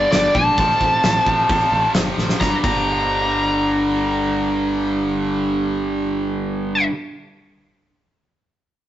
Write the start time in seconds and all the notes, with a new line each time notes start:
Already playing: G2 D3 G3 D5
0.12 G1 D5, snare, open hi-hat
0.35 A#1 A5, kick
0.58 A1 F2 C3 F3, kick, open hi-hat
0.81 A1, kick
1.04 A1, snare, open hi-hat
1.26 A1, kick
1.49 A1 F2 C3 F3, kick, open hi-hat
1.72 A1
1.94 G1, snare, open hi-hat
2.18 A1, snare
2.29 snare
2.40 G1 G2 D3 A#5, kick, snare
2.44 G3
2.62 G1 G2 D3 G3 A#5, kick, crash